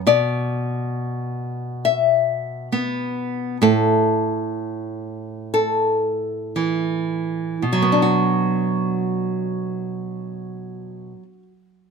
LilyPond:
\new Staff \with { instrumentName = "Nylon-string guitar" } { \time 4/4 \key b \minor \tempo 4 = 60 << { d''2 e''2 | a'2 a'2 | <fis b d' fis'>1 | } \\ { b,2. b4 | a,2. e4 | b,1 | } >> }